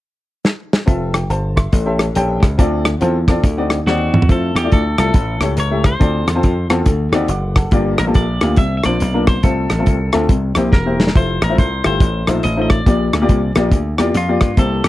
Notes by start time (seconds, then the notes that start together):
0.45 snare
0.73 snare
0.86 F1 C4 F4 A4 E5, kick, closed hi-hat
1.14 G5, cross-stick, closed hi-hat
1.30 G1 C5 A5, closed hi-hat
1.56 E5 C6, kick, cross-stick, closed hi-hat
1.72 A1 A2, kick, closed hi-hat
1.86 C#4 G4 A4 E5
1.99 cross-stick, closed hi-hat
2.15 A#1 C#4 G4 A4 G5, closed hi-hat
2.43 C#2, kick, cross-stick, closed hi-hat
2.58 D2 D3 C4 F4 A4 D5, kick, closed hi-hat
2.85 cross-stick, closed hi-hat
3.01 E2 C4 F4 A4 C5, closed hi-hat
3.28 C4 F4 A4 D5, kick, cross-stick, closed hi-hat
3.44 D2 D3, kick, closed hi-hat
3.57 C4 D#4 F#4 D5
3.70 cross-stick, closed hi-hat
3.86 D#2 C4 D#4 F#4 D5, snare
4.13 E2, mid tom
4.22 floor tom
4.29 F2 A3 E4 F4 A4 C5, kick, closed hi-hat
4.55 E2 G4, cross-stick, closed hi-hat
4.64 A3 E4 F4 D5
4.72 D2 A4, kick, closed hi-hat
4.98 C2 A3 E4 F4 A4, cross-stick, closed hi-hat
5.14 A1 A2, kick, closed hi-hat
5.41 C#2 A3 E4 G4 C#5, cross-stick, closed hi-hat
5.57 C#2 C#5, closed hi-hat
5.71 A3 E4 G4 E5
5.84 C5, kick, cross-stick, closed hi-hat
5.99 D2 D3 C4 F4 A4 D5, kick, closed hi-hat
6.27 E2, cross-stick, closed hi-hat
6.35 C4 F4 A4 C5
6.43 F2, kick, closed hi-hat
6.70 E2 C4 F4 A4 C5, cross-stick, closed hi-hat
6.86 D2 D3, kick, closed hi-hat
7.12 D#2 C4 D#4 F#4 D5, cross-stick, closed hi-hat
7.28 F#1 F#5 D6, closed hi-hat
7.56 A4 F#5, kick, cross-stick, closed hi-hat
7.71 G1 G2 A#3 F4 G4 D5, kick, closed hi-hat
7.98 A1 A#4, cross-stick, closed hi-hat
8.07 A#3 F4 G4 A4
8.14 A#1 D5, kick, closed hi-hat
8.41 D2 A#3 F4 G4 F5, cross-stick, closed hi-hat
8.56 C2 C3 E5, kick, closed hi-hat
8.77 E5
8.84 A#1 A#3 D4 F4 C5 D5, cross-stick, closed hi-hat
9.00 B1, closed hi-hat
9.14 A#3 D4 F4 A#4
9.27 C5, kick, cross-stick, closed hi-hat
9.43 C2 C3 A3 C4 F4 A4 C5, kick, closed hi-hat
9.70 A1, cross-stick, closed hi-hat
9.79 A3 C4 F4 A4
9.86 C2, kick, closed hi-hat
10.12 D2 A3 C4 F4 A4, cross-stick, closed hi-hat
10.29 C2 C3, kick, closed hi-hat
10.55 A#1 A#3 E4 G4 C5, cross-stick, closed hi-hat
10.72 E1 A#4, kick, snare
10.86 A#3 E4 G4 C5
11.00 snare
11.07 snare
11.15 F1 A3 E4 F4 C5, kick, closed hi-hat
11.42 A1 A#4, cross-stick, closed hi-hat
11.49 A3 E4 F4 C5
11.58 C2 C5, kick, closed hi-hat
11.84 G1 A3 E4 F4 G4 C5, cross-stick, closed hi-hat
12.00 A1 A2, kick, closed hi-hat
12.27 A#1 A3 D#4 F4 C5, cross-stick, closed hi-hat
12.43 A1 D#5, closed hi-hat
12.57 A3 D#4 F4 C5
12.62 D#5
12.70 D5, kick, cross-stick, closed hi-hat
12.86 A#1 A#2 A#3 F4 G4 D5, kick, closed hi-hat
13.13 D2, cross-stick, closed hi-hat
13.22 A#3 F4 G4 D5
13.29 C2, kick, closed hi-hat
13.55 A#1 A#3 F4 G4 D5, cross-stick, closed hi-hat
13.71 D2, kick, closed hi-hat
13.98 E2 A#3 F4 G4 D5, cross-stick, closed hi-hat
14.14 F2 F4, closed hi-hat
14.29 A#3 F4 G4 D5
14.41 G2, kick, cross-stick, closed hi-hat
14.57 C2 C3 A#3 E4 G4 A4 C5, kick, closed hi-hat
14.84 E2, cross-stick, closed hi-hat